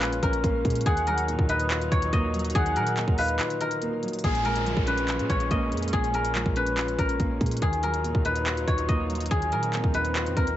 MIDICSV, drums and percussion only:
0, 0, Header, 1, 2, 480
1, 0, Start_track
1, 0, Tempo, 422535
1, 977, Time_signature, 4, 2, 24, 8
1, 12005, End_track
2, 0, Start_track
2, 0, Title_t, "Drums"
2, 17, Note_on_c, 9, 39, 112
2, 18, Note_on_c, 9, 42, 86
2, 131, Note_off_c, 9, 39, 0
2, 131, Note_off_c, 9, 42, 0
2, 142, Note_on_c, 9, 42, 58
2, 256, Note_off_c, 9, 42, 0
2, 257, Note_on_c, 9, 36, 98
2, 258, Note_on_c, 9, 42, 75
2, 371, Note_off_c, 9, 36, 0
2, 372, Note_off_c, 9, 42, 0
2, 376, Note_on_c, 9, 42, 61
2, 490, Note_off_c, 9, 42, 0
2, 498, Note_on_c, 9, 36, 98
2, 498, Note_on_c, 9, 42, 70
2, 611, Note_off_c, 9, 36, 0
2, 611, Note_off_c, 9, 42, 0
2, 736, Note_on_c, 9, 36, 94
2, 737, Note_on_c, 9, 42, 52
2, 797, Note_off_c, 9, 42, 0
2, 797, Note_on_c, 9, 42, 63
2, 850, Note_off_c, 9, 36, 0
2, 857, Note_off_c, 9, 42, 0
2, 857, Note_on_c, 9, 42, 70
2, 917, Note_off_c, 9, 42, 0
2, 917, Note_on_c, 9, 42, 83
2, 976, Note_off_c, 9, 42, 0
2, 976, Note_on_c, 9, 42, 86
2, 977, Note_on_c, 9, 36, 116
2, 1090, Note_off_c, 9, 42, 0
2, 1091, Note_off_c, 9, 36, 0
2, 1101, Note_on_c, 9, 42, 63
2, 1215, Note_off_c, 9, 42, 0
2, 1215, Note_on_c, 9, 42, 63
2, 1329, Note_off_c, 9, 42, 0
2, 1337, Note_on_c, 9, 42, 85
2, 1450, Note_off_c, 9, 42, 0
2, 1459, Note_on_c, 9, 42, 73
2, 1573, Note_off_c, 9, 42, 0
2, 1576, Note_on_c, 9, 36, 100
2, 1690, Note_off_c, 9, 36, 0
2, 1693, Note_on_c, 9, 42, 87
2, 1806, Note_off_c, 9, 42, 0
2, 1813, Note_on_c, 9, 42, 69
2, 1926, Note_off_c, 9, 42, 0
2, 1937, Note_on_c, 9, 39, 108
2, 1938, Note_on_c, 9, 42, 88
2, 2050, Note_off_c, 9, 39, 0
2, 2051, Note_off_c, 9, 42, 0
2, 2062, Note_on_c, 9, 42, 59
2, 2176, Note_off_c, 9, 42, 0
2, 2177, Note_on_c, 9, 36, 93
2, 2179, Note_on_c, 9, 42, 75
2, 2291, Note_off_c, 9, 36, 0
2, 2293, Note_off_c, 9, 42, 0
2, 2297, Note_on_c, 9, 42, 63
2, 2410, Note_off_c, 9, 42, 0
2, 2418, Note_on_c, 9, 36, 95
2, 2418, Note_on_c, 9, 42, 67
2, 2531, Note_off_c, 9, 36, 0
2, 2531, Note_off_c, 9, 42, 0
2, 2658, Note_on_c, 9, 42, 51
2, 2718, Note_off_c, 9, 42, 0
2, 2718, Note_on_c, 9, 42, 62
2, 2778, Note_off_c, 9, 42, 0
2, 2778, Note_on_c, 9, 42, 75
2, 2838, Note_off_c, 9, 42, 0
2, 2838, Note_on_c, 9, 42, 84
2, 2896, Note_off_c, 9, 42, 0
2, 2896, Note_on_c, 9, 42, 82
2, 2897, Note_on_c, 9, 36, 116
2, 3010, Note_off_c, 9, 36, 0
2, 3010, Note_off_c, 9, 42, 0
2, 3021, Note_on_c, 9, 42, 64
2, 3135, Note_off_c, 9, 42, 0
2, 3135, Note_on_c, 9, 42, 61
2, 3249, Note_off_c, 9, 42, 0
2, 3256, Note_on_c, 9, 42, 87
2, 3370, Note_off_c, 9, 42, 0
2, 3376, Note_on_c, 9, 39, 101
2, 3378, Note_on_c, 9, 42, 72
2, 3490, Note_off_c, 9, 39, 0
2, 3491, Note_off_c, 9, 42, 0
2, 3496, Note_on_c, 9, 36, 101
2, 3609, Note_off_c, 9, 36, 0
2, 3611, Note_on_c, 9, 46, 91
2, 3725, Note_off_c, 9, 46, 0
2, 3731, Note_on_c, 9, 42, 69
2, 3845, Note_off_c, 9, 42, 0
2, 3855, Note_on_c, 9, 39, 109
2, 3855, Note_on_c, 9, 42, 85
2, 3968, Note_off_c, 9, 39, 0
2, 3969, Note_off_c, 9, 42, 0
2, 3979, Note_on_c, 9, 42, 60
2, 4093, Note_off_c, 9, 42, 0
2, 4097, Note_on_c, 9, 42, 75
2, 4210, Note_off_c, 9, 42, 0
2, 4214, Note_on_c, 9, 42, 61
2, 4328, Note_off_c, 9, 42, 0
2, 4335, Note_on_c, 9, 42, 67
2, 4449, Note_off_c, 9, 42, 0
2, 4575, Note_on_c, 9, 42, 51
2, 4635, Note_off_c, 9, 42, 0
2, 4635, Note_on_c, 9, 42, 58
2, 4695, Note_off_c, 9, 42, 0
2, 4695, Note_on_c, 9, 42, 74
2, 4756, Note_off_c, 9, 42, 0
2, 4756, Note_on_c, 9, 42, 84
2, 4815, Note_off_c, 9, 42, 0
2, 4815, Note_on_c, 9, 42, 81
2, 4816, Note_on_c, 9, 36, 108
2, 4929, Note_off_c, 9, 42, 0
2, 4930, Note_off_c, 9, 36, 0
2, 4940, Note_on_c, 9, 42, 62
2, 5054, Note_off_c, 9, 42, 0
2, 5054, Note_on_c, 9, 42, 59
2, 5168, Note_off_c, 9, 42, 0
2, 5175, Note_on_c, 9, 42, 83
2, 5289, Note_off_c, 9, 42, 0
2, 5299, Note_on_c, 9, 42, 68
2, 5412, Note_off_c, 9, 42, 0
2, 5416, Note_on_c, 9, 36, 97
2, 5529, Note_off_c, 9, 36, 0
2, 5532, Note_on_c, 9, 42, 85
2, 5645, Note_off_c, 9, 42, 0
2, 5653, Note_on_c, 9, 42, 65
2, 5766, Note_off_c, 9, 42, 0
2, 5776, Note_on_c, 9, 39, 104
2, 5776, Note_on_c, 9, 42, 83
2, 5889, Note_off_c, 9, 39, 0
2, 5890, Note_off_c, 9, 42, 0
2, 5900, Note_on_c, 9, 42, 55
2, 6014, Note_off_c, 9, 42, 0
2, 6017, Note_on_c, 9, 36, 92
2, 6018, Note_on_c, 9, 42, 72
2, 6131, Note_off_c, 9, 36, 0
2, 6131, Note_off_c, 9, 42, 0
2, 6136, Note_on_c, 9, 42, 57
2, 6250, Note_off_c, 9, 42, 0
2, 6257, Note_on_c, 9, 36, 92
2, 6257, Note_on_c, 9, 42, 63
2, 6371, Note_off_c, 9, 36, 0
2, 6371, Note_off_c, 9, 42, 0
2, 6497, Note_on_c, 9, 42, 46
2, 6557, Note_off_c, 9, 42, 0
2, 6557, Note_on_c, 9, 42, 58
2, 6617, Note_off_c, 9, 42, 0
2, 6617, Note_on_c, 9, 42, 69
2, 6677, Note_off_c, 9, 42, 0
2, 6677, Note_on_c, 9, 42, 80
2, 6735, Note_off_c, 9, 42, 0
2, 6735, Note_on_c, 9, 42, 83
2, 6736, Note_on_c, 9, 36, 109
2, 6849, Note_off_c, 9, 42, 0
2, 6850, Note_off_c, 9, 36, 0
2, 6861, Note_on_c, 9, 42, 58
2, 6974, Note_off_c, 9, 42, 0
2, 6974, Note_on_c, 9, 42, 59
2, 7087, Note_off_c, 9, 42, 0
2, 7095, Note_on_c, 9, 42, 85
2, 7209, Note_off_c, 9, 42, 0
2, 7216, Note_on_c, 9, 39, 101
2, 7218, Note_on_c, 9, 42, 70
2, 7330, Note_off_c, 9, 39, 0
2, 7331, Note_off_c, 9, 42, 0
2, 7335, Note_on_c, 9, 36, 97
2, 7449, Note_off_c, 9, 36, 0
2, 7452, Note_on_c, 9, 42, 83
2, 7565, Note_off_c, 9, 42, 0
2, 7572, Note_on_c, 9, 42, 63
2, 7686, Note_off_c, 9, 42, 0
2, 7696, Note_on_c, 9, 39, 104
2, 7696, Note_on_c, 9, 42, 88
2, 7809, Note_off_c, 9, 39, 0
2, 7810, Note_off_c, 9, 42, 0
2, 7820, Note_on_c, 9, 42, 56
2, 7933, Note_off_c, 9, 42, 0
2, 7936, Note_on_c, 9, 36, 88
2, 7937, Note_on_c, 9, 42, 74
2, 8050, Note_off_c, 9, 36, 0
2, 8051, Note_off_c, 9, 42, 0
2, 8055, Note_on_c, 9, 42, 60
2, 8169, Note_off_c, 9, 42, 0
2, 8176, Note_on_c, 9, 42, 65
2, 8177, Note_on_c, 9, 36, 95
2, 8289, Note_off_c, 9, 42, 0
2, 8290, Note_off_c, 9, 36, 0
2, 8416, Note_on_c, 9, 36, 93
2, 8416, Note_on_c, 9, 42, 48
2, 8476, Note_off_c, 9, 42, 0
2, 8476, Note_on_c, 9, 42, 57
2, 8529, Note_off_c, 9, 36, 0
2, 8536, Note_off_c, 9, 42, 0
2, 8536, Note_on_c, 9, 42, 69
2, 8596, Note_off_c, 9, 42, 0
2, 8596, Note_on_c, 9, 42, 82
2, 8654, Note_off_c, 9, 42, 0
2, 8654, Note_on_c, 9, 42, 82
2, 8656, Note_on_c, 9, 36, 106
2, 8768, Note_off_c, 9, 42, 0
2, 8769, Note_off_c, 9, 36, 0
2, 8780, Note_on_c, 9, 42, 62
2, 8893, Note_off_c, 9, 42, 0
2, 8893, Note_on_c, 9, 42, 58
2, 9007, Note_off_c, 9, 42, 0
2, 9016, Note_on_c, 9, 42, 84
2, 9129, Note_off_c, 9, 42, 0
2, 9138, Note_on_c, 9, 42, 69
2, 9252, Note_off_c, 9, 42, 0
2, 9256, Note_on_c, 9, 36, 96
2, 9369, Note_off_c, 9, 36, 0
2, 9371, Note_on_c, 9, 42, 82
2, 9485, Note_off_c, 9, 42, 0
2, 9492, Note_on_c, 9, 42, 64
2, 9606, Note_off_c, 9, 42, 0
2, 9615, Note_on_c, 9, 39, 103
2, 9616, Note_on_c, 9, 42, 85
2, 9729, Note_off_c, 9, 39, 0
2, 9730, Note_off_c, 9, 42, 0
2, 9739, Note_on_c, 9, 42, 58
2, 9853, Note_off_c, 9, 42, 0
2, 9856, Note_on_c, 9, 36, 93
2, 9856, Note_on_c, 9, 42, 73
2, 9970, Note_off_c, 9, 36, 0
2, 9970, Note_off_c, 9, 42, 0
2, 9974, Note_on_c, 9, 42, 58
2, 10088, Note_off_c, 9, 42, 0
2, 10096, Note_on_c, 9, 42, 65
2, 10097, Note_on_c, 9, 36, 95
2, 10209, Note_off_c, 9, 42, 0
2, 10210, Note_off_c, 9, 36, 0
2, 10336, Note_on_c, 9, 42, 48
2, 10396, Note_off_c, 9, 42, 0
2, 10396, Note_on_c, 9, 42, 59
2, 10456, Note_off_c, 9, 42, 0
2, 10456, Note_on_c, 9, 42, 69
2, 10516, Note_off_c, 9, 42, 0
2, 10516, Note_on_c, 9, 42, 83
2, 10575, Note_off_c, 9, 42, 0
2, 10575, Note_on_c, 9, 42, 81
2, 10576, Note_on_c, 9, 36, 107
2, 10689, Note_off_c, 9, 42, 0
2, 10690, Note_off_c, 9, 36, 0
2, 10700, Note_on_c, 9, 42, 61
2, 10814, Note_off_c, 9, 42, 0
2, 10814, Note_on_c, 9, 42, 58
2, 10928, Note_off_c, 9, 42, 0
2, 10936, Note_on_c, 9, 42, 83
2, 11050, Note_off_c, 9, 42, 0
2, 11057, Note_on_c, 9, 39, 96
2, 11058, Note_on_c, 9, 42, 70
2, 11170, Note_off_c, 9, 39, 0
2, 11172, Note_off_c, 9, 42, 0
2, 11176, Note_on_c, 9, 36, 97
2, 11289, Note_off_c, 9, 36, 0
2, 11292, Note_on_c, 9, 42, 85
2, 11406, Note_off_c, 9, 42, 0
2, 11413, Note_on_c, 9, 42, 63
2, 11526, Note_off_c, 9, 42, 0
2, 11537, Note_on_c, 9, 39, 102
2, 11538, Note_on_c, 9, 42, 85
2, 11651, Note_off_c, 9, 39, 0
2, 11651, Note_off_c, 9, 42, 0
2, 11661, Note_on_c, 9, 42, 58
2, 11774, Note_off_c, 9, 42, 0
2, 11777, Note_on_c, 9, 36, 92
2, 11777, Note_on_c, 9, 42, 75
2, 11890, Note_off_c, 9, 36, 0
2, 11891, Note_off_c, 9, 42, 0
2, 11896, Note_on_c, 9, 42, 60
2, 12005, Note_off_c, 9, 42, 0
2, 12005, End_track
0, 0, End_of_file